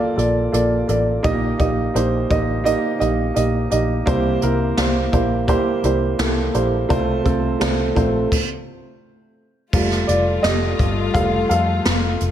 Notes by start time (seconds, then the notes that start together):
Already playing: A#2 F3 A#3 F4 A4 D5
0.16 A#1 A#3 F4 A4 D5, closed hi-hat
0.52 A#1 A#3 F4 A4 D5, closed hi-hat
0.88 A1 A#3 F4 A4 D5, closed hi-hat
1.23 A#1 A#2 A#3 D#4 G4 D#5, kick, closed hi-hat
1.58 A#1 A#3 D#4 G4 D#5, kick, closed hi-hat
1.94 A#1 A#3 D#4 G4 C5, closed hi-hat
2.30 A1 A#3 D#4 G4 D#5, kick, closed hi-hat
2.64 A#3 D#4 G4 D#5, closed hi-hat
2.99 A#1 A#3 D#4 G4 D#5, closed hi-hat
3.34 A#1 A#3 D#4 G4 D#5, closed hi-hat
3.70 A#1 A#3 D#4 G4 D#5, closed hi-hat
4.06 C2 C3 G3 A#3 E4 G4 C5, kick, closed hi-hat
4.42 C2 A#3 E4 G4 A#4, closed hi-hat
4.77 C2 A#3 E4 G4 C5, snare, closed hi-hat
5.12 A#1 A#3 E4 G4 C5, kick, closed hi-hat
5.48 A#3 E4 G4 C5, kick, closed hi-hat
5.83 C2 A#3 E4 G4 C5, closed hi-hat
6.18 C2 A#3 E4 G4 A4, snare, closed hi-hat
6.53 A#1 A#3 E4 G4 C5, closed hi-hat
6.89 C2 C3 A3 C4 F4 C5, kick, closed hi-hat
7.24 C2 A3 C4 F4 A4, kick, closed hi-hat
7.59 C2 A3 C4 F4 C5, snare, closed hi-hat
7.95 A#1 A3 C4 F4 C5, kick, closed hi-hat
8.32 kick, crash
9.73 F1 G3 A3 F4, kick, crash
9.91 snare
10.07 F1 F4 D5, closed hi-hat
10.43 F1 G4 D#5, snare, closed hi-hat
10.79 G1, kick, closed hi-hat
11.14 F1 G3 A3 F4 A4 F5, kick, closed hi-hat
11.49 F2 A4 F5, closed hi-hat
11.85 F1, snare, closed hi-hat
12.20 F1, closed hi-hat